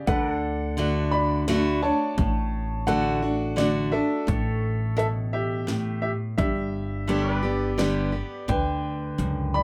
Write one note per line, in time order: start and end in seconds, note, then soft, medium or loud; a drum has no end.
0.07 1.90 D2 medium
0.07 0.76 D3 medium
0.07 4.25 D4 medium
0.07 1.09 A4 medium
0.07 0.33 B4 medium
0.07 1.16 F#5 loud
0.07 kick loud
0.07 closed hi-hat medium
0.33 4.25 A4 medium
0.77 1.44 D3 medium
0.77 1.44 A3 medium
0.77 1.45 D4 medium
0.77 1.45 F#4 loud
0.77 closed hi-hat medium
1.11 1.79 D5 medium
1.11 1.78 B5 loud
1.48 1.81 D3 medium
1.48 1.82 A3 loud
1.48 1.82 D4 medium
1.48 1.81 F#4 loud
1.48 snare medium
1.48 closed hi-hat medium
1.82 2.17 D4 soft
1.82 2.16 F#4 medium
1.82 2.84 C#5 medium
1.82 2.91 A5 loud
2.18 4.00 A1 medium
2.18 3.51 A2 medium
2.18 kick loud
2.18 closed hi-hat medium
2.87 3.21 D3 medium
2.87 3.21 A3 medium
2.87 3.22 D4 loud
2.87 3.21 F#4 loud
2.87 3.54 A4 medium
2.87 3.60 F#5 loud
2.87 closed hi-hat medium
3.22 3.56 D4 soft
3.22 3.56 F#4 medium
3.56 3.91 D3 medium
3.56 3.91 A3 medium
3.56 3.92 D4 medium
3.56 3.90 F#4 medium
3.56 3.94 D5 medium
3.56 snare loud
3.56 closed hi-hat medium
3.92 4.27 D4 medium
3.92 4.26 F#4 medium
3.92 4.94 A4 medium
3.92 4.96 E5 medium
4.27 6.10 A1 medium
4.27 5.61 A2 medium
4.27 6.37 A4 medium
4.27 6.37 C#5 medium
4.27 kick loud
4.27 closed hi-hat medium
4.97 5.64 B2 medium
4.97 5.06 A4 medium
4.97 5.06 E5 medium
4.97 closed hi-hat medium
5.33 6.00 G4 medium
5.33 6.00 E5 medium
5.67 6.34 A2 medium
5.67 snare medium
5.67 closed hi-hat medium
6.02 6.11 G4 medium
6.02 6.10 E5 medium
6.38 8.21 G1 medium
6.38 7.72 G2 medium
6.38 7.75 G4 medium
6.38 7.83 E5 medium
6.38 kick loud
6.38 closed hi-hat medium
7.08 7.42 D3 medium
7.08 7.42 G3 medium
7.08 7.43 B3 medium
7.08 7.41 G4 loud
7.08 7.34 A4 medium
7.08 7.29 C#5 medium
7.08 closed hi-hat medium
7.29 9.63 D5 medium
7.34 9.63 B4 medium
7.43 7.77 B3 medium
7.43 7.77 G4 medium
7.78 8.12 D3 medium
7.78 8.12 G3 medium
7.78 8.12 B3 medium
7.78 8.11 G4 medium
7.78 8.46 G4 medium
7.78 8.51 D5 medium
7.78 snare medium
7.78 closed hi-hat medium
8.12 8.48 B3 soft
8.12 8.47 G4 medium
8.48 9.10 D2 medium
8.48 9.63 D3 medium
8.48 9.51 B4 medium
8.48 9.58 G5 medium
8.48 kick loud
8.48 closed hi-hat medium
9.18 9.63 C#2 medium
9.18 9.63 F#2 medium
9.18 closed hi-hat medium
9.54 9.63 D5 medium
9.54 9.63 B5 loud